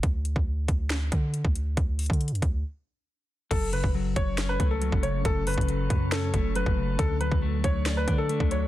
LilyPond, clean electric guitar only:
\new Staff \with { instrumentName = "Clean electric guitar" } { \clef bass \time 4/4 \key fis \minor \tempo 4 = 138 r1 | r1 | fis,8 cis8 fis4 cis'8 a8 fis8 cis8 | fis,8 cis8 fis4 cis'8 a8 fis8 cis8 |
d8 fis8 a4 d''8 d'8 a8 fis8 | }